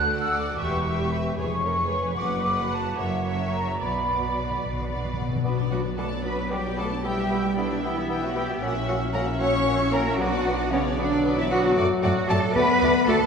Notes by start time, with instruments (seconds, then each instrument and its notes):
Already playing: cello section D2, double bass section D2, viola section A4, flute section F#6
0.08 violin section F#4 D5 F#5
0.21 flute section E6
0.34 flute section D6
0.58 double bass section E1, cello section E2, viola section G4, violin section G4 B4 E5, flute section C#6
0.85 violin section G4 B4 E5
1.12 flute section B5
1.37 double bass section F1, cello section F2, viola section G#4, violin section G#4 B4 C#5, flute section C#6
1.63 violin section G#4 B4 C#5, viola section A#4
1.92 viola section B4
2.17 double bass section F#1, cello section F#2, violin section F#4 B4 F#5, flute section D6
2.43 violin section F#4 B4 F#5
2.59 flute section B5
2.72 flute section A5
2.97 double bass section F#1, cello section F#2, violin section F#4 A#4 E5, viola section C#5, flute section F#5
3.24 violin section F#4 A#4 E5
3.40 flute section F#5
3.53 flute section A#5
3.79 double bass section B1, cello section B2, timpani B2, violin section F#4 B4 D5, viola section D5, flute section B5
3.88 timpani B2
3.96 timpani B2
4.06 violin section F#4 B4 D5
4.12 timpani B2
4.19 timpani B2
4.35 timpani B2
4.42 timpani B2
4.51 timpani B2
4.58 timpani B2, cello section B2
4.62 double bass section B1, timpani B2
4.73 timpani B2
4.80 timpani B2
4.89 timpani B2, violin section F#4 B4 D5
4.97 timpani B2
5.05 timpani B2
5.13 timpani B2
5.21 timpani B2
5.29 timpani B2
5.36 timpani B2
5.44 double bass section B1, clarinet F#3, bassoon B3, viola section D4 F#4, violin section B4, oboe D5, flute section B5
5.58 viola section B3 D4, violin section D5
5.70 french horn section F#3, bassoon B3, viola section D4 F#4, cello section F#4, violin section B4 F#5, oboe D5, flute section B5
5.83 viola section B3 D4, violin section D5
5.97 french horn section A3, bassoon B3, viola section D4 F#4, cello section A4, violin section B4 A5, oboe D5, flute section B5
6.11 viola section B3 D4, violin section D5
6.23 bassoon B3, french horn section B3, viola section D4 F#4, violin section B4 B5, cello section B4, oboe D5, flute section B5
6.38 viola section B3 D4, violin section D5
6.50 french horn section G3, bassoon B3, viola section D4 F#4, cello section G4, violin section B4 G5, oboe D5, flute section B5
6.65 viola section B3 D4, violin section D5
6.77 french horn section A3, bassoon B3, viola section D4 F#4, cello section A4, violin section B4 A5, oboe D5, flute section B5
6.91 viola section B3 D4, violin section D5
7.03 french horn section G3, clarinet G3, viola section G3 E4, bassoon B3, cello section G4, oboe E5, violin section G5, flute section B5
7.17 viola section B3 G4, violin section E5
7.29 viola section G3 E4, bassoon B3, oboe E5, violin section G5, flute section B5
7.44 viola section B3 G4, violin section E5
7.56 french horn section D3, viola section G3 E4, bassoon B3, cello section D4, violin section D5 G5, oboe E5, flute section B5
7.71 viola section B3 G4, violin section E5
7.82 french horn section E3, viola section G3 E4, clarinet B3, bassoon B3, cello section E4, violin section E5 G5, oboe E5, flute section B5
7.97 viola section B3 G4, violin section E5
8.09 viola section G3 E4, bassoon B3, oboe E5, violin section G5, flute section B5
8.22 french horn section F#3, viola section B3 G4, cello section F#4, violin section E5 F#5
8.34 french horn section G3, viola section G3 E4, bassoon B3, cello section G4, oboe E5, violin section G5, flute section B5
8.48 viola section B3 G4, violin section E5
8.61 double bass section A#1, viola section A#3 F#4, bassoon C#4, clarinet C#4, oboe E5, violin section F#5, flute section F#5
8.75 viola section C#4 E4, violin section E5
8.88 french horn section F#3, viola section A#3 F#4, bassoon C#4, cello section F#4, oboe E5, violin section F#5, flute section F#5
9.00 viola section C#4 E4, violin section E5
9.13 viola section A#3 F#4, french horn section A#3, bassoon C#4, cello section A#4, oboe E5, violin section F#5 A#5, flute section F#5
9.26 viola section C#4 E4, violin section E5
9.39 viola section A#3 F#4, french horn section C#4, bassoon C#4, cello section C#5, oboe E5, violin section F#5 C#6, flute section F#5
9.53 viola section C#4 E4, violin section E5
9.65 viola section A#3 F#4, bassoon C#4, oboe E5, violin section F#5, flute section F#5
9.79 viola section C#4 E4, violin section E5
9.91 french horn section A#3, viola section A#3 F#4, bassoon C#4, cello section A#4, oboe E5, violin section F#5 A#5, flute section F#5
10.05 viola section C#4 E4, violin section E5
10.18 double bass section B1, french horn section F#3, bassoon B3, viola section D4 F#4, clarinet D4, cello section F#4, violin section B4 F#5, oboe D5, flute section F#5
10.31 viola section B3 D4, violin section D5
10.45 bassoon B3, viola section D4 F#4, violin section B4, oboe D5, flute section F#5
10.58 viola section B3 D4, violin section D5
10.70 french horn section C#3, bassoon B3, cello section C#4, viola section D4 F#4, violin section B4 C#5, oboe D5, flute section F#5
10.84 viola section B3 D4, violin section D5
10.97 french horn section D3, clarinet F#3, bassoon B3, viola section D4 F#4, cello section D4, violin section B4 D5, oboe D5, flute section F#5
11.11 viola section B3 D4, violin section D5
11.24 bassoon B3, viola section D4 F#4, violin section B4, oboe D5, flute section F#5
11.37 french horn section E3, viola section B3 D4, cello section E4, violin section D5 E5
11.49 french horn section F#3, bassoon B3, viola section D4 F#4, cello section F#4, violin section B4 F#5, oboe D5, flute section F#5
11.62 viola section B3 D4, violin section D5
11.75 double bass section F#2, viola section A3 F#4, bassoon A3, oboe D5, violin section D5, flute section F#5
12.01 double bass section F#2, french horn section F#3, viola section A3 F#4, bassoon A3, cello section F#4, oboe D5, violin section D5 F#5, flute section F#5
12.27 double bass section F#2, viola section A3 F#4, french horn section A3, bassoon A3, cello section A4, oboe D5, violin section D5 A5, flute section F#5
12.54 double bass section D2, viola section A3 F#4, bassoon A3, french horn section B3, cello section B4, oboe D5, violin section D5 B5, flute section F#5
12.80 double bass section D2, viola section A3 F#4, bassoon A3, oboe D5, violin section D5, flute section F#5
13.06 double bass section D2, viola section A3 F#4, french horn section A3, bassoon A3, cello section A4, oboe D5, violin section D5 A5, flute section F#5